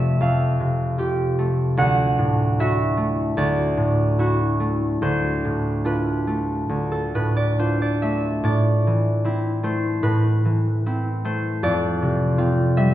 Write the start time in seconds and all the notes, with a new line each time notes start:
Already playing: F2 C3 A3 C4 F4 G4 A4 C5 D5 E5
0.21 F2 F5
0.60 C3
0.98 F4 G4
1.39 A3
1.77 D2 F#5
2.18 A2
2.59 E4 F#4 E5
2.97 A3
3.37 D2 D5
3.77 A2
4.19 E4 F#4
4.60 A3
5.02 D2 C5
5.45 A2
5.85 D4 F4 B4
6.27 A3
6.69 D2
6.92 A4
7.15 A2 B4
7.37 D5
7.59 D4 F4 C5
7.82 D5
8.02 A3 E5
8.44 A2 D5
8.87 E3
9.25 C4 E4
9.63 A3 C5
10.03 A2 B4
10.45 E3
10.86 C4 E4
11.25 A3 C5
11.63 F2 D5
12.02 C3
12.38 C4 F4
12.77 G3 E5